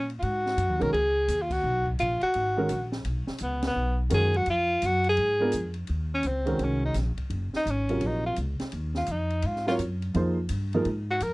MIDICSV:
0, 0, Header, 1, 6, 480
1, 0, Start_track
1, 0, Tempo, 354610
1, 290, Time_signature, 4, 2, 24, 8
1, 15343, End_track
2, 0, Start_track
2, 0, Title_t, "Tenor saxophone"
2, 0, Program_c, 0, 66
2, 0, Note_on_c, 0, 61, 88
2, 143, Note_off_c, 0, 61, 0
2, 261, Note_on_c, 0, 65, 62
2, 313, Note_on_c, 0, 66, 101
2, 334, Note_off_c, 0, 65, 0
2, 1114, Note_on_c, 0, 70, 93
2, 1134, Note_off_c, 0, 66, 0
2, 1250, Note_off_c, 0, 70, 0
2, 1258, Note_on_c, 0, 68, 94
2, 1924, Note_on_c, 0, 65, 74
2, 1944, Note_off_c, 0, 68, 0
2, 2057, Note_on_c, 0, 66, 103
2, 2077, Note_off_c, 0, 65, 0
2, 2531, Note_off_c, 0, 66, 0
2, 2704, Note_on_c, 0, 65, 85
2, 2990, Note_off_c, 0, 65, 0
2, 3017, Note_on_c, 0, 66, 89
2, 3917, Note_off_c, 0, 66, 0
2, 4641, Note_on_c, 0, 59, 77
2, 4919, Note_off_c, 0, 59, 0
2, 4968, Note_on_c, 0, 59, 88
2, 5395, Note_off_c, 0, 59, 0
2, 5607, Note_on_c, 0, 68, 101
2, 5915, Note_on_c, 0, 66, 89
2, 5935, Note_off_c, 0, 68, 0
2, 6067, Note_off_c, 0, 66, 0
2, 6088, Note_on_c, 0, 65, 104
2, 6577, Note_on_c, 0, 66, 98
2, 6598, Note_off_c, 0, 65, 0
2, 6868, Note_off_c, 0, 66, 0
2, 6890, Note_on_c, 0, 68, 103
2, 7774, Note_off_c, 0, 68, 0
2, 8318, Note_on_c, 0, 61, 83
2, 8495, Note_on_c, 0, 60, 71
2, 8515, Note_off_c, 0, 61, 0
2, 8990, Note_on_c, 0, 61, 69
2, 9010, Note_off_c, 0, 60, 0
2, 9270, Note_off_c, 0, 61, 0
2, 9279, Note_on_c, 0, 63, 71
2, 9419, Note_off_c, 0, 63, 0
2, 10238, Note_on_c, 0, 63, 86
2, 10428, Note_on_c, 0, 61, 70
2, 10448, Note_off_c, 0, 63, 0
2, 10916, Note_on_c, 0, 63, 69
2, 10937, Note_off_c, 0, 61, 0
2, 11173, Note_off_c, 0, 63, 0
2, 11181, Note_on_c, 0, 65, 78
2, 11330, Note_off_c, 0, 65, 0
2, 12145, Note_on_c, 0, 65, 81
2, 12337, Note_on_c, 0, 63, 73
2, 12357, Note_off_c, 0, 65, 0
2, 12810, Note_on_c, 0, 65, 78
2, 12831, Note_off_c, 0, 63, 0
2, 13091, Note_off_c, 0, 65, 0
2, 13099, Note_on_c, 0, 65, 77
2, 13195, Note_off_c, 0, 65, 0
2, 15035, Note_on_c, 0, 66, 91
2, 15200, Note_on_c, 0, 70, 104
2, 15220, Note_off_c, 0, 66, 0
2, 15343, Note_off_c, 0, 70, 0
2, 15343, End_track
3, 0, Start_track
3, 0, Title_t, "Upright piano"
3, 0, Program_c, 1, 0
3, 1075, Note_on_c, 1, 51, 67
3, 1086, Note_on_c, 1, 56, 53
3, 1087, Note_on_c, 1, 61, 62
3, 1090, Note_on_c, 1, 66, 57
3, 1092, Note_on_c, 1, 70, 73
3, 1230, Note_off_c, 1, 51, 0
3, 1235, Note_off_c, 1, 56, 0
3, 1236, Note_off_c, 1, 61, 0
3, 1237, Note_off_c, 1, 66, 0
3, 1238, Note_off_c, 1, 70, 0
3, 3475, Note_on_c, 1, 56, 68
3, 3476, Note_on_c, 1, 51, 65
3, 3490, Note_on_c, 1, 66, 66
3, 3491, Note_on_c, 1, 61, 63
3, 3497, Note_on_c, 1, 70, 80
3, 3631, Note_off_c, 1, 51, 0
3, 3631, Note_off_c, 1, 56, 0
3, 3638, Note_off_c, 1, 61, 0
3, 3638, Note_off_c, 1, 66, 0
3, 3641, Note_off_c, 1, 70, 0
3, 5548, Note_on_c, 1, 51, 65
3, 5558, Note_on_c, 1, 56, 58
3, 5560, Note_on_c, 1, 61, 59
3, 5564, Note_on_c, 1, 70, 66
3, 5566, Note_on_c, 1, 66, 56
3, 5842, Note_off_c, 1, 51, 0
3, 5847, Note_off_c, 1, 56, 0
3, 5848, Note_off_c, 1, 61, 0
3, 5850, Note_off_c, 1, 70, 0
3, 5851, Note_off_c, 1, 66, 0
3, 7310, Note_on_c, 1, 56, 67
3, 7318, Note_on_c, 1, 62, 69
3, 7319, Note_on_c, 1, 59, 65
3, 7331, Note_on_c, 1, 70, 87
3, 7334, Note_on_c, 1, 65, 61
3, 7468, Note_off_c, 1, 56, 0
3, 7472, Note_off_c, 1, 62, 0
3, 7473, Note_off_c, 1, 59, 0
3, 7479, Note_off_c, 1, 70, 0
3, 7480, Note_off_c, 1, 65, 0
3, 8738, Note_on_c, 1, 51, 65
3, 8746, Note_on_c, 1, 56, 56
3, 8754, Note_on_c, 1, 61, 59
3, 8760, Note_on_c, 1, 66, 57
3, 8767, Note_on_c, 1, 70, 69
3, 9366, Note_off_c, 1, 51, 0
3, 9370, Note_off_c, 1, 56, 0
3, 9374, Note_off_c, 1, 61, 0
3, 9377, Note_off_c, 1, 66, 0
3, 9380, Note_off_c, 1, 70, 0
3, 10682, Note_on_c, 1, 48, 52
3, 10684, Note_on_c, 1, 54, 53
3, 10686, Note_on_c, 1, 65, 52
3, 10695, Note_on_c, 1, 70, 53
3, 10695, Note_on_c, 1, 73, 60
3, 11298, Note_off_c, 1, 48, 0
3, 11299, Note_off_c, 1, 54, 0
3, 11300, Note_off_c, 1, 65, 0
3, 11305, Note_off_c, 1, 70, 0
3, 11305, Note_off_c, 1, 73, 0
3, 13081, Note_on_c, 1, 54, 71
3, 13090, Note_on_c, 1, 60, 63
3, 13104, Note_on_c, 1, 65, 65
3, 13104, Note_on_c, 1, 70, 66
3, 13111, Note_on_c, 1, 73, 85
3, 13234, Note_off_c, 1, 54, 0
3, 13238, Note_off_c, 1, 60, 0
3, 13246, Note_off_c, 1, 65, 0
3, 13246, Note_off_c, 1, 70, 0
3, 13249, Note_off_c, 1, 73, 0
3, 13728, Note_on_c, 1, 53, 68
3, 13739, Note_on_c, 1, 58, 61
3, 13748, Note_on_c, 1, 63, 61
3, 13754, Note_on_c, 1, 68, 56
3, 13754, Note_on_c, 1, 72, 77
3, 14012, Note_off_c, 1, 53, 0
3, 14017, Note_off_c, 1, 58, 0
3, 14022, Note_off_c, 1, 63, 0
3, 14025, Note_off_c, 1, 68, 0
3, 14025, Note_off_c, 1, 72, 0
3, 14541, Note_on_c, 1, 53, 74
3, 14542, Note_on_c, 1, 58, 66
3, 14544, Note_on_c, 1, 63, 66
3, 14556, Note_on_c, 1, 68, 66
3, 14561, Note_on_c, 1, 70, 82
3, 14683, Note_off_c, 1, 53, 0
3, 14684, Note_off_c, 1, 58, 0
3, 14685, Note_off_c, 1, 63, 0
3, 14691, Note_off_c, 1, 68, 0
3, 14694, Note_off_c, 1, 70, 0
3, 15343, End_track
4, 0, Start_track
4, 0, Title_t, "Upright bass"
4, 0, Program_c, 2, 32
4, 0, Note_on_c, 2, 46, 69
4, 277, Note_off_c, 2, 46, 0
4, 307, Note_on_c, 2, 44, 66
4, 765, Note_off_c, 2, 44, 0
4, 774, Note_on_c, 2, 42, 81
4, 940, Note_off_c, 2, 42, 0
4, 940, Note_on_c, 2, 39, 57
4, 1084, Note_off_c, 2, 39, 0
4, 1092, Note_on_c, 2, 35, 65
4, 1240, Note_off_c, 2, 35, 0
4, 1259, Note_on_c, 2, 37, 72
4, 1721, Note_off_c, 2, 37, 0
4, 1734, Note_on_c, 2, 39, 81
4, 2199, Note_off_c, 2, 39, 0
4, 2216, Note_on_c, 2, 35, 80
4, 2680, Note_off_c, 2, 35, 0
4, 2702, Note_on_c, 2, 34, 72
4, 2988, Note_off_c, 2, 34, 0
4, 3186, Note_on_c, 2, 32, 67
4, 3645, Note_off_c, 2, 32, 0
4, 3654, Note_on_c, 2, 34, 71
4, 4119, Note_off_c, 2, 34, 0
4, 4128, Note_on_c, 2, 35, 74
4, 4421, Note_off_c, 2, 35, 0
4, 4615, Note_on_c, 2, 37, 78
4, 5075, Note_off_c, 2, 37, 0
4, 5083, Note_on_c, 2, 35, 68
4, 5553, Note_off_c, 2, 35, 0
4, 5573, Note_on_c, 2, 42, 88
4, 6038, Note_off_c, 2, 42, 0
4, 6046, Note_on_c, 2, 41, 73
4, 6515, Note_off_c, 2, 41, 0
4, 6530, Note_on_c, 2, 42, 76
4, 6997, Note_off_c, 2, 42, 0
4, 7012, Note_on_c, 2, 44, 72
4, 7478, Note_off_c, 2, 44, 0
4, 7495, Note_on_c, 2, 41, 71
4, 7960, Note_off_c, 2, 41, 0
4, 7978, Note_on_c, 2, 39, 66
4, 8441, Note_off_c, 2, 39, 0
4, 8447, Note_on_c, 2, 37, 75
4, 8916, Note_off_c, 2, 37, 0
4, 8924, Note_on_c, 2, 36, 71
4, 9394, Note_off_c, 2, 36, 0
4, 9406, Note_on_c, 2, 34, 80
4, 9701, Note_off_c, 2, 34, 0
4, 9879, Note_on_c, 2, 30, 77
4, 10177, Note_off_c, 2, 30, 0
4, 10365, Note_on_c, 2, 32, 74
4, 10835, Note_off_c, 2, 32, 0
4, 10842, Note_on_c, 2, 34, 73
4, 11313, Note_off_c, 2, 34, 0
4, 11335, Note_on_c, 2, 37, 84
4, 11625, Note_off_c, 2, 37, 0
4, 11815, Note_on_c, 2, 39, 80
4, 12280, Note_off_c, 2, 39, 0
4, 12288, Note_on_c, 2, 41, 84
4, 12756, Note_off_c, 2, 41, 0
4, 12769, Note_on_c, 2, 44, 73
4, 13237, Note_off_c, 2, 44, 0
4, 13251, Note_on_c, 2, 42, 80
4, 13718, Note_off_c, 2, 42, 0
4, 13738, Note_on_c, 2, 41, 73
4, 14201, Note_off_c, 2, 41, 0
4, 14210, Note_on_c, 2, 43, 79
4, 14676, Note_off_c, 2, 43, 0
4, 14693, Note_on_c, 2, 44, 74
4, 15158, Note_off_c, 2, 44, 0
4, 15172, Note_on_c, 2, 41, 75
4, 15343, Note_off_c, 2, 41, 0
4, 15343, End_track
5, 0, Start_track
5, 0, Title_t, "Muted upright bass strokes"
5, 3017, Note_on_c, 9, 29, 36
5, 3153, Note_off_c, 9, 29, 0
5, 4446, Note_on_c, 9, 29, 38
5, 4581, Note_off_c, 9, 29, 0
5, 9709, Note_on_c, 9, 29, 38
5, 9845, Note_off_c, 9, 29, 0
5, 10201, Note_on_c, 9, 29, 38
5, 10336, Note_off_c, 9, 29, 0
5, 11656, Note_on_c, 9, 29, 39
5, 11791, Note_off_c, 9, 29, 0
5, 15343, End_track
6, 0, Start_track
6, 0, Title_t, "Drums"
6, 131, Note_on_c, 9, 51, 36
6, 266, Note_off_c, 9, 51, 0
6, 303, Note_on_c, 9, 51, 57
6, 438, Note_off_c, 9, 51, 0
6, 623, Note_on_c, 9, 38, 36
6, 759, Note_off_c, 9, 38, 0
6, 782, Note_on_c, 9, 44, 46
6, 782, Note_on_c, 9, 51, 66
6, 917, Note_off_c, 9, 44, 0
6, 917, Note_off_c, 9, 51, 0
6, 1100, Note_on_c, 9, 51, 44
6, 1235, Note_off_c, 9, 51, 0
6, 1273, Note_on_c, 9, 51, 47
6, 1409, Note_off_c, 9, 51, 0
6, 1737, Note_on_c, 9, 44, 58
6, 1737, Note_on_c, 9, 51, 66
6, 1873, Note_off_c, 9, 44, 0
6, 1873, Note_off_c, 9, 51, 0
6, 2036, Note_on_c, 9, 36, 73
6, 2039, Note_on_c, 9, 49, 70
6, 2171, Note_off_c, 9, 36, 0
6, 2175, Note_off_c, 9, 49, 0
6, 2512, Note_on_c, 9, 36, 59
6, 2647, Note_off_c, 9, 36, 0
6, 2690, Note_on_c, 9, 44, 53
6, 2690, Note_on_c, 9, 51, 61
6, 2825, Note_off_c, 9, 44, 0
6, 2825, Note_off_c, 9, 51, 0
6, 2994, Note_on_c, 9, 51, 43
6, 3129, Note_off_c, 9, 51, 0
6, 3163, Note_on_c, 9, 51, 56
6, 3298, Note_off_c, 9, 51, 0
6, 3640, Note_on_c, 9, 44, 55
6, 3640, Note_on_c, 9, 51, 67
6, 3775, Note_off_c, 9, 44, 0
6, 3775, Note_off_c, 9, 51, 0
6, 3953, Note_on_c, 9, 38, 55
6, 4088, Note_off_c, 9, 38, 0
6, 4123, Note_on_c, 9, 51, 59
6, 4258, Note_off_c, 9, 51, 0
6, 4427, Note_on_c, 9, 38, 46
6, 4563, Note_off_c, 9, 38, 0
6, 4580, Note_on_c, 9, 44, 55
6, 4580, Note_on_c, 9, 51, 66
6, 4715, Note_off_c, 9, 44, 0
6, 4715, Note_off_c, 9, 51, 0
6, 4906, Note_on_c, 9, 51, 58
6, 4907, Note_on_c, 9, 38, 76
6, 5041, Note_off_c, 9, 51, 0
6, 5043, Note_off_c, 9, 38, 0
6, 5553, Note_on_c, 9, 44, 53
6, 5553, Note_on_c, 9, 51, 73
6, 5689, Note_off_c, 9, 44, 0
6, 5689, Note_off_c, 9, 51, 0
6, 5876, Note_on_c, 9, 51, 41
6, 6012, Note_off_c, 9, 51, 0
6, 6035, Note_on_c, 9, 51, 60
6, 6171, Note_off_c, 9, 51, 0
6, 6520, Note_on_c, 9, 44, 60
6, 6520, Note_on_c, 9, 51, 66
6, 6655, Note_off_c, 9, 44, 0
6, 6655, Note_off_c, 9, 51, 0
6, 6823, Note_on_c, 9, 51, 45
6, 6958, Note_off_c, 9, 51, 0
6, 6995, Note_on_c, 9, 51, 54
6, 7130, Note_off_c, 9, 51, 0
6, 7467, Note_on_c, 9, 44, 58
6, 7467, Note_on_c, 9, 51, 58
6, 7602, Note_off_c, 9, 44, 0
6, 7602, Note_off_c, 9, 51, 0
6, 7766, Note_on_c, 9, 51, 41
6, 7901, Note_off_c, 9, 51, 0
6, 7946, Note_on_c, 9, 51, 52
6, 8081, Note_off_c, 9, 51, 0
6, 8431, Note_on_c, 9, 44, 54
6, 8431, Note_on_c, 9, 51, 53
6, 8566, Note_off_c, 9, 44, 0
6, 8566, Note_off_c, 9, 51, 0
6, 8751, Note_on_c, 9, 51, 41
6, 8887, Note_off_c, 9, 51, 0
6, 8921, Note_on_c, 9, 51, 51
6, 9056, Note_off_c, 9, 51, 0
6, 9397, Note_on_c, 9, 44, 49
6, 9397, Note_on_c, 9, 51, 52
6, 9398, Note_on_c, 9, 38, 34
6, 9532, Note_off_c, 9, 44, 0
6, 9532, Note_off_c, 9, 51, 0
6, 9533, Note_off_c, 9, 38, 0
6, 9712, Note_on_c, 9, 36, 48
6, 9712, Note_on_c, 9, 51, 40
6, 9847, Note_off_c, 9, 51, 0
6, 9848, Note_off_c, 9, 36, 0
6, 9885, Note_on_c, 9, 51, 52
6, 10020, Note_off_c, 9, 51, 0
6, 10197, Note_on_c, 9, 38, 36
6, 10332, Note_off_c, 9, 38, 0
6, 10376, Note_on_c, 9, 44, 54
6, 10376, Note_on_c, 9, 51, 57
6, 10512, Note_off_c, 9, 44, 0
6, 10512, Note_off_c, 9, 51, 0
6, 10678, Note_on_c, 9, 51, 46
6, 10813, Note_off_c, 9, 51, 0
6, 10838, Note_on_c, 9, 51, 55
6, 10973, Note_off_c, 9, 51, 0
6, 11319, Note_on_c, 9, 44, 45
6, 11319, Note_on_c, 9, 51, 59
6, 11455, Note_off_c, 9, 44, 0
6, 11455, Note_off_c, 9, 51, 0
6, 11634, Note_on_c, 9, 51, 39
6, 11636, Note_on_c, 9, 38, 55
6, 11770, Note_off_c, 9, 51, 0
6, 11771, Note_off_c, 9, 38, 0
6, 11800, Note_on_c, 9, 51, 55
6, 11935, Note_off_c, 9, 51, 0
6, 12107, Note_on_c, 9, 38, 45
6, 12242, Note_off_c, 9, 38, 0
6, 12270, Note_on_c, 9, 44, 50
6, 12270, Note_on_c, 9, 51, 58
6, 12405, Note_off_c, 9, 44, 0
6, 12405, Note_off_c, 9, 51, 0
6, 12593, Note_on_c, 9, 51, 40
6, 12728, Note_off_c, 9, 51, 0
6, 12753, Note_on_c, 9, 51, 60
6, 12889, Note_off_c, 9, 51, 0
6, 12936, Note_on_c, 9, 38, 24
6, 13071, Note_off_c, 9, 38, 0
6, 13088, Note_on_c, 9, 38, 41
6, 13223, Note_off_c, 9, 38, 0
6, 13249, Note_on_c, 9, 44, 44
6, 13249, Note_on_c, 9, 51, 59
6, 13384, Note_off_c, 9, 44, 0
6, 13384, Note_off_c, 9, 51, 0
6, 13564, Note_on_c, 9, 51, 40
6, 13700, Note_off_c, 9, 51, 0
6, 13731, Note_on_c, 9, 51, 52
6, 13867, Note_off_c, 9, 51, 0
6, 14195, Note_on_c, 9, 44, 46
6, 14195, Note_on_c, 9, 51, 77
6, 14331, Note_off_c, 9, 44, 0
6, 14331, Note_off_c, 9, 51, 0
6, 14520, Note_on_c, 9, 51, 39
6, 14655, Note_off_c, 9, 51, 0
6, 14685, Note_on_c, 9, 51, 52
6, 14821, Note_off_c, 9, 51, 0
6, 15165, Note_on_c, 9, 44, 49
6, 15165, Note_on_c, 9, 51, 65
6, 15300, Note_off_c, 9, 44, 0
6, 15300, Note_off_c, 9, 51, 0
6, 15343, End_track
0, 0, End_of_file